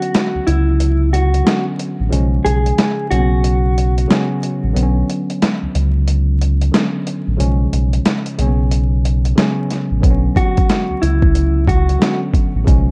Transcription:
Already playing: tine electric piano D3 F#3 B3 C#4, clean electric guitar F#4
0.02 closed hi-hat
0.14 cross-stick, snare, closed hi-hat
0.35 sub bass C#2
0.47 sub bass C#2, clean electric guitar E4, closed hi-hat
0.80 closed hi-hat
1.13 clean electric guitar F#4, closed hi-hat
1.34 closed hi-hat
1.44 tine electric piano D3 F#3 B3 C#4, snare, closed hi-hat
1.48 cross-stick
1.79 closed hi-hat
2.00 sub bass A1
2.09 sub bass B1, tine electric piano C#3 F3 G#3 C#4, closed hi-hat
2.45 sub bass B1, clean electric guitar G#4, closed hi-hat
2.66 closed hi-hat
2.78 cross-stick, snare, closed hi-hat
3.11 sub bass B1, tine electric piano C#3 F#3 A#3 C#4, clean electric guitar F#4, closed hi-hat
3.19 tine electric piano B3
3.44 closed hi-hat
3.78 closed hi-hat
3.98 closed hi-hat
4.08 tine electric piano C#3 F#3 B3 C#4, cross-stick, snare, closed hi-hat
4.43 closed hi-hat
4.64 sub bass A1
4.73 sub bass B1, tine electric piano D3 F#3 B3 C4, closed hi-hat
4.83 tine electric piano C#4
5.09 closed hi-hat
5.30 closed hi-hat
5.42 cross-stick, snare, closed hi-hat
5.63 sub bass C#2
5.75 sub bass C#2, closed hi-hat
6.08 closed hi-hat
6.41 closed hi-hat
6.61 closed hi-hat
6.71 tine electric piano D3 F#3 B3 C#4, cross-stick, snare, closed hi-hat
7.07 closed hi-hat
7.27 sub bass A1
7.37 sub bass B1, tine electric piano C#3 F3 G#3 C#4, closed hi-hat
7.73 sub bass B1, closed hi-hat
7.93 closed hi-hat
8.05 cross-stick, snare, closed hi-hat
8.26 closed hi-hat
8.38 sub bass B1, tine electric piano C#3 F#3 A#3 C#4, closed hi-hat
8.47 tine electric piano B3
8.71 closed hi-hat
9.05 closed hi-hat
9.25 closed hi-hat
9.36 tine electric piano C#3 F#3 B3 C#4, cross-stick, snare, closed hi-hat
9.71 snare, closed hi-hat
9.91 sub bass A1
10.01 sub bass B1, tine electric piano D3 F#3 B3 C4, kick, closed hi-hat
10.10 tine electric piano C#4
10.36 clean electric guitar F#4, kick, closed hi-hat
10.57 kick, closed hi-hat
10.69 cross-stick, snare, closed hi-hat
10.90 sub bass C#2
11.02 sub bass C#2, clean electric guitar E4, closed hi-hat
11.22 kick
11.35 closed hi-hat
11.68 clean electric guitar F#4, kick, closed hi-hat
11.89 closed hi-hat
11.99 tine electric piano D3 F#3 B3 C#4, cross-stick, snare, closed hi-hat
12.34 kick, closed hi-hat
12.55 sub bass A1
12.64 sub bass B1, tine electric piano C#3 F3 G#3 C#4, kick, closed hi-hat

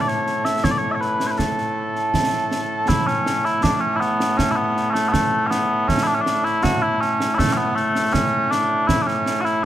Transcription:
Already playing: bagpipes A2 A3
0.01 bagpipes D5
0.08 bagpipes C#5, snare
0.27 snare
0.45 bagpipes E5, snare
0.64 bagpipes C#5, concert bass drum, snare
0.71 bagpipes D5
0.78 bagpipes C#5
0.91 bagpipes C#5 E5
1.01 bagpipes B4, snare
1.20 snare
1.27 bagpipes C#5
1.31 bagpipes B4
1.38 bagpipes A4, concert bass drum, snare
1.58 snare
1.95 snare
2.14 concert bass drum, snare
2.51 snare
2.88 bagpipes E4, concert bass drum, snare
3.07 bagpipes C#4, snare
3.26 snare
3.45 bagpipes E4, snare
3.63 bagpipes D4, concert bass drum, snare
3.81 bagpipes C#4
3.96 bagpipes B3 E4
4.01 snare
4.20 snare
4.37 bagpipes C#4, concert bass drum, snare
4.51 bagpipes E4
4.56 bagpipes B3
4.77 snare
4.90 bagpipes A3 C#4
4.95 snare
5.09 bagpipes A3 B3
5.14 concert bass drum, snare
5.47 bagpipes B3 C#4
5.51 snare
5.88 bagpipes C#4, concert bass drum, snare
6.03 bagpipes D4 E4
6.08 snare
6.15 bagpipes C#4
6.21 bagpipes D4
6.26 snare
6.44 bagpipes E4, snare
6.63 bagpipes F#4, concert bass drum, snare
6.82 bagpipes E4
7.01 bagpipes C#4, snare
7.20 snare
7.35 bagpipes A3 E4
7.39 concert bass drum, snare
7.53 bagpipes B3 C#4
7.75 bagpipes A3, snare
7.96 snare
8.13 bagpipes C#4, concert bass drum, snare
8.51 bagpipes D4, snare
8.87 bagpipes E4, concert bass drum, snare
9.02 bagpipes D4
9.07 bagpipes C#4, snare
9.26 snare
9.41 bagpipes E4 F#4
9.45 snare

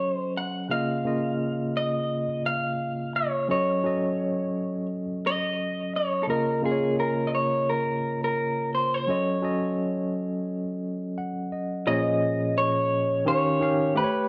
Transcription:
Already playing: tine electric piano F#3 C#4 A4, clean electric guitar C#5
0.13 clean electric guitar C5
0.37 clean electric guitar F#5
0.69 tine electric piano C#3 A#3 F4 D#5, clean electric guitar F5
1.04 tine electric piano C#3 A#3 F4 D#5
1.77 clean electric guitar D#5
2.46 clean electric guitar F5
3.16 clean electric guitar C#5
3.48 tine electric piano F#3 C#4 A4 D#5, clean electric guitar C#5
3.84 tine electric piano F#3 C#4 A4 D#5
5.27 clean electric guitar D#5
5.96 clean electric guitar C#5
6.23 clean electric guitar A4
6.27 tine electric piano C#3 A#3 F4 D#5, clean electric guitar A#4
6.62 tine electric piano C#3 A#3 F4 A#4, clean electric guitar G#4
6.72 tine electric piano C#5
7.00 clean electric guitar A#4
7.27 clean electric guitar D#5
7.35 clean electric guitar C#5
7.70 clean electric guitar A#4
8.24 clean electric guitar A#4
8.75 clean electric guitar C5
8.94 clean electric guitar C#5
9.07 tine electric piano F#3 C#4 A4 D#5
9.42 tine electric piano F#3 C#4 A4 D#5
11.18 tine electric piano F#5
11.52 tine electric piano D#5
11.86 tine electric piano A#2 F3 C#4 G#4 C#5 D#5, clean electric guitar D#5
12.58 clean electric guitar C#5
13.25 tine electric piano D#3 C#4 G4 F5, clean electric guitar C#5
13.60 tine electric piano D#3 C#4 G4 F5
13.95 tine electric piano A3 G4 B4 C5, clean electric guitar B4
14.04 tine electric piano C#5

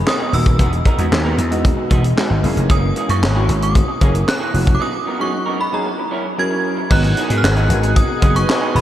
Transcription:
Already playing: grand piano A#3 B3 D#4 G#4
0.06 synth bell D#6, muted clean electric guitar stroke, snare, clap
0.19 clean electric guitar F#3 B3 D#4 G#4
0.33 slap bass D#1, grand piano A#3 B3 D#4 F#4, synth bell E6, muted clean electric guitar stroke, open hi-hat
0.46 muted clean electric guitar stroke, kick, closed hi-hat
0.59 slap bass E1, clean electric guitar G#3 B3 D#4 G#4, kick, closed hi-hat
0.72 muted clean electric guitar stroke, closed hi-hat
0.85 clean electric guitar G#3 B3 D#4 A#4, kick, closed hi-hat
0.98 slap bass E2, grand piano G#3 B3 D#4 F#4, clean electric guitar G#3 B3 D#4 G#4, closed hi-hat
1.12 slap bass D#2, muted clean electric guitar stroke, snare, clap
1.24 clean electric guitar G#3 B3 D#4 A#4
1.38 slap bass E2, muted clean electric guitar stroke, closed hi-hat
1.51 grand piano G#3 B3 D#4 F#4, muted clean electric guitar stroke, closed hi-hat
1.64 muted clean electric guitar stroke, kick, closed hi-hat
1.77 muted clean electric guitar stroke
1.90 slap bass E1, clean electric guitar G#3 B3 D#4 G#4, kick, closed hi-hat
2.04 muted clean electric guitar stroke, closed hi-hat
2.17 grand piano G#3 B3 D#4 F#4, muted clean electric guitar stroke, snare, clap
2.30 slap bass G#1, muted clean electric guitar stroke
2.43 slap bass F#1, grand piano A#3 C#4 E4 G#4, open hi-hat
2.56 slap bass F1, muted clean electric guitar stroke, closed hi-hat
2.69 slap bass F#1, clean electric guitar E3 A#3 C#4 G#4, synth bell D#6, kick, closed hi-hat
2.82 muted clean electric guitar stroke
2.96 clean electric guitar E3 A#3 C#4 G#4, closed hi-hat
3.09 slap bass F#2, clean electric guitar E3 A#3 C#4 G#4, synth bell C#6, closed hi-hat
3.22 slap bass G#1, muted clean electric guitar stroke, snare, clap
3.35 clean electric guitar E3 A#3 C#4 G#4, grand piano A#3 C#4 E4 F#4
3.49 slap bass G#1, muted clean electric guitar stroke, closed hi-hat
3.62 synth bell D#6, muted clean electric guitar stroke, closed hi-hat
3.75 muted clean electric guitar stroke, kick, closed hi-hat
3.88 muted clean electric guitar stroke
4.01 slap bass F#1, clean electric guitar E3 A#3 C#4 G#4, grand piano A#3 C#4 E4 G#4, kick, closed hi-hat
4.14 muted clean electric guitar stroke, closed hi-hat
4.27 synth bell F#6, muted clean electric guitar stroke, snare, clap
4.40 clean electric guitar E3 A#3 C#4 G#4
4.54 slap bass F1, grand piano A#3 C#4 E4 F#4, muted clean electric guitar stroke, open hi-hat
4.67 muted clean electric guitar stroke, kick, closed hi-hat
4.75 synth bell D6
4.80 clean electric guitar F#3 B3 D#4 G#4, synth bell D#6
4.93 muted clean electric guitar stroke
5.06 clean electric guitar F#3 B3 D#4 A#4
5.19 grand piano F#3 C#4 D#4 F#4 G#4, clean electric guitar F#3 B3 D#4 G#4, synth bell C#6
5.33 muted clean electric guitar stroke
5.46 clean electric guitar F#3 B3 D#4 A#4
5.59 synth bell B5, muted clean electric guitar stroke
5.72 grand piano F#3 C#4 D#4 F#4 G#4, synth bell A#5, muted clean electric guitar stroke
5.85 muted clean electric guitar stroke
5.98 muted clean electric guitar stroke
6.11 clean electric guitar F#3 C#4 E4 A#4
6.25 muted clean electric guitar stroke
6.38 grand piano F#3 C#4 E4 G#4 A#4, synth bell G#6, muted clean electric guitar stroke
6.51 muted clean electric guitar stroke
6.77 muted clean electric guitar stroke
6.90 slap bass G#1, clean electric guitar F#3 B3 D#4 G#4, grand piano B3 D#4 F#4 A#4, analog synth pad G#4 D#5 F#5 G#5, synth bell F#6, kick, crash
7.04 muted clean electric guitar stroke, closed hi-hat
7.16 clean electric guitar F#3 B3 D#4 G#4, closed hi-hat
7.29 slap bass G#2, clean electric guitar F#3 B3 D#4 G#4, closed hi-hat
7.38 synth bell F6
7.43 slap bass G#1, synth bell F#6, muted clean electric guitar stroke, snare, clap
7.56 clean electric guitar F#3 B3 D#4 G#4, closed hi-hat
7.69 slap bass G#1, grand piano B3 D#4 F#4 A#4, muted clean electric guitar stroke, closed hi-hat
7.83 muted clean electric guitar stroke, closed hi-hat
7.96 synth bell D#6, muted clean electric guitar stroke, kick, closed hi-hat
8.09 muted clean electric guitar stroke
8.22 slap bass F#1, clean electric guitar F#3 B3 D#4 G#4, kick, closed hi-hat
8.35 grand piano B3 D#4 F#4 A#4, synth bell C#6, muted clean electric guitar stroke, closed hi-hat
8.42 grand piano B4
8.48 muted clean electric guitar stroke, snare, clap
8.61 clean electric guitar F#3 B3 D#4 G#4
8.75 slap bass D#1, synth bell B5, muted clean electric guitar stroke, open hi-hat

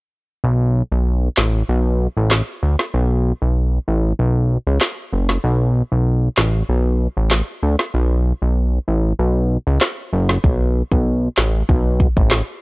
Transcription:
0.44 analog synth bass B1
0.92 analog synth bass B1
1.37 analog synth bass A1, snare, clap
1.69 analog synth bass B1
2.17 analog synth bass A1
2.31 snare, clap
2.63 analog synth bass D2
2.79 snare
2.94 analog synth bass B1
3.42 analog synth bass B1
3.88 analog synth bass A1
4.19 analog synth bass B1
4.67 analog synth bass C#2
4.81 snare, clap
5.13 analog synth bass F#1
5.29 snare
5.44 analog synth bass B1
5.92 analog synth bass B1
6.37 analog synth bass A1, snare, clap
6.69 analog synth bass B1
7.17 analog synth bass A1
7.31 snare, clap
7.63 analog synth bass D2
7.79 snare
7.94 analog synth bass B1
8.42 analog synth bass B1
8.88 analog synth bass A1
9.19 analog synth bass B1
9.67 analog synth bass C#2
9.81 cross-stick, snare, clap
10.13 analog synth bass F#1
10.29 snare
10.44 analog synth bass B1, kick
10.92 analog synth bass B1, kick
11.37 analog synth bass A1, snare, clap
11.69 analog synth bass B1, kick
12.00 kick
12.17 analog synth bass A1, kick
12.31 snare, clap

